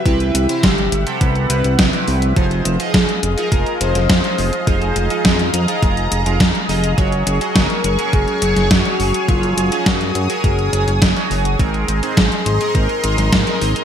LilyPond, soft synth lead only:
\new Staff \with { instrumentName = "Soft synth lead" } { \time 4/4 \key f \phrygian \tempo 4 = 104 e'4 g'4 b'4. r8 | r4 aes'4 bes'8 c''4. | aes'2 r2 | r4 bes'4 aes'4 ges'4 |
f'4 ges'4 aes'4. r8 | r4 aes'4 bes'2 | }